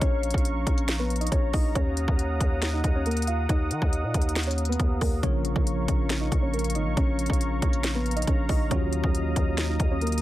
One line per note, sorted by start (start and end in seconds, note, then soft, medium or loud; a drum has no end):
0.00 0.33 A#1 loud
0.00 0.96 C#4 medium
0.00 1.72 C#5 medium
0.00 0.95 C#5 loud
0.00 1.72 F5 medium
0.00 5.19 A#5 medium
0.00 1.72 C#6 medium
0.00 kick loud
0.00 closed hi-hat medium
0.23 closed hi-hat medium
0.31 0.65 A#1 loud
0.31 kick medium
0.31 closed hi-hat medium
0.38 closed hi-hat medium
0.45 closed hi-hat medium
0.67 1.29 A#1 loud
0.67 kick medium
0.67 closed hi-hat medium
0.78 closed hi-hat medium
0.88 snare loud
0.88 closed hi-hat medium
0.99 1.16 B3 medium
0.99 1.16 B4 medium
1.10 closed hi-hat soft
1.16 closed hi-hat medium
1.21 1.30 D#4 medium
1.21 1.29 D#5 medium
1.21 closed hi-hat medium
1.27 closed hi-hat medium
1.32 1.53 A#1 loud
1.32 1.49 C#4 medium
1.32 1.48 C#5 medium
1.32 kick loud
1.32 closed hi-hat medium
1.53 1.74 A#1 loud
1.53 1.71 D#4 medium
1.53 1.70 D#5 medium
1.53 kick loud
1.53 open hi-hat medium
1.75 2.07 D#2 loud
1.75 2.70 C#4 medium
1.75 2.69 C#5 loud
1.75 10.22 F5 medium
1.75 5.20 F#5 medium
1.75 5.20 D#6 medium
1.75 kick loud
1.75 closed hi-hat medium
1.97 closed hi-hat medium
2.08 2.39 D#2 loud
2.08 kick loud
2.19 closed hi-hat medium
2.40 2.82 D#2 loud
2.40 kick medium
2.40 closed hi-hat medium
2.62 snare loud
2.62 closed hi-hat medium
2.73 2.90 D#4 medium
2.73 2.90 D#5 medium
2.84 3.47 D#2 loud
2.84 kick medium
2.84 closed hi-hat medium
2.96 3.04 C#4 medium
2.96 3.04 C#5 medium
3.06 3.23 A#3 medium
3.06 3.23 A#4 medium
3.06 closed hi-hat soft
3.11 closed hi-hat medium
3.17 closed hi-hat medium
3.22 closed hi-hat medium
3.27 3.45 F4 medium
3.27 3.44 F5 medium
3.27 closed hi-hat medium
3.49 3.72 D#2 loud
3.49 4.44 D#4 medium
3.49 4.43 D#5 medium
3.49 kick loud
3.49 closed hi-hat medium
3.71 3.81 D#3 loud
3.71 closed hi-hat medium
3.82 4.05 D#2 loud
3.82 kick medium
3.93 closed hi-hat medium
4.04 4.14 A#2 loud
4.14 4.77 D#2 loud
4.14 kick medium
4.14 closed hi-hat medium
4.22 closed hi-hat medium
4.29 closed hi-hat medium
4.36 snare loud
4.36 closed hi-hat medium
4.43 4.64 C#5 medium
4.43 closed hi-hat medium
4.48 4.64 C#4 medium
4.48 closed hi-hat medium
4.58 closed hi-hat medium
4.65 5.00 B4 medium
4.65 closed hi-hat medium
4.70 5.00 B3 medium
4.70 closed hi-hat medium
4.80 5.00 D#2 loud
4.80 kick loud
4.80 closed hi-hat medium
5.01 5.22 D#2 loud
5.01 5.19 A#3 medium
5.01 5.18 A#4 medium
5.01 kick loud
5.01 open hi-hat medium
5.22 5.54 A#1 loud
5.22 8.66 C#3 medium
5.22 8.67 F3 medium
5.22 8.67 A#3 medium
5.22 6.17 C#4 medium
5.22 8.68 F4 medium
5.22 8.68 A#4 medium
5.22 6.17 C#5 loud
5.22 8.67 C#5 medium
5.22 10.22 A#5 medium
5.22 8.67 C#6 medium
5.22 kick loud
5.22 closed hi-hat medium
5.45 closed hi-hat medium
5.56 5.87 A#1 loud
5.56 kick medium
5.67 closed hi-hat medium
5.88 6.30 A#1 loud
5.88 kick medium
5.88 closed hi-hat medium
6.10 snare loud
6.10 closed hi-hat loud
6.21 6.38 D#4 medium
6.21 6.37 D#5 medium
6.32 6.77 A#1 loud
6.32 kick medium
6.32 closed hi-hat medium
6.42 6.51 C#4 medium
6.42 6.51 C#5 medium
6.54 6.71 A#3 medium
6.54 6.70 A#4 medium
6.54 closed hi-hat soft
6.59 closed hi-hat medium
6.64 closed hi-hat medium
6.70 closed hi-hat medium
6.75 6.88 G#1 loud
6.75 6.92 D#4 medium
6.75 6.92 D#5 medium
6.75 closed hi-hat medium
6.86 6.97 A#1 loud
6.97 7.28 A#1 loud
6.97 7.91 C#4 medium
6.97 7.91 C#5 loud
6.97 kick loud
6.97 closed hi-hat medium
7.19 closed hi-hat medium
7.26 7.61 A#1 loud
7.26 kick medium
7.26 closed hi-hat medium
7.33 closed hi-hat medium
7.41 closed hi-hat medium
7.62 8.25 A#1 loud
7.62 kick medium
7.62 closed hi-hat medium
7.73 closed hi-hat medium
7.84 snare loud
7.84 closed hi-hat loud
7.95 8.12 B3 medium
7.95 8.12 B4 medium
8.06 closed hi-hat soft
8.11 closed hi-hat medium
8.16 8.25 D#4 medium
8.16 8.25 D#5 medium
8.16 closed hi-hat medium
8.22 closed hi-hat medium
8.27 8.48 A#1 loud
8.27 8.45 C#4 medium
8.27 8.44 C#5 medium
8.27 kick loud
8.27 closed hi-hat medium
8.49 8.70 A#1 loud
8.49 8.66 D#4 medium
8.49 8.66 D#5 medium
8.49 kick loud
8.49 open hi-hat medium
8.70 9.02 D#2 loud
8.70 10.22 D#3 medium
8.70 10.22 F#3 medium
8.70 9.65 C#4 medium
8.70 10.22 F4 medium
8.70 10.22 F#4 medium
8.70 9.65 C#5 loud
8.70 10.22 D#5 medium
8.70 10.22 D#6 medium
8.70 kick loud
8.70 closed hi-hat medium
8.93 closed hi-hat medium
9.04 9.35 D#2 loud
9.04 kick medium
9.15 closed hi-hat medium
9.36 9.78 D#2 loud
9.36 kick medium
9.36 closed hi-hat medium
9.58 snare loud
9.58 closed hi-hat medium
9.69 9.86 D#4 medium
9.69 9.86 D#5 medium
9.80 10.22 D#2 loud
9.80 kick medium
9.80 closed hi-hat medium
9.91 10.00 C#4 medium
9.91 9.99 C#5 medium
10.01 10.19 A#3 medium
10.01 10.18 A#4 medium
10.01 closed hi-hat soft
10.07 closed hi-hat medium
10.12 closed hi-hat medium
10.18 closed hi-hat medium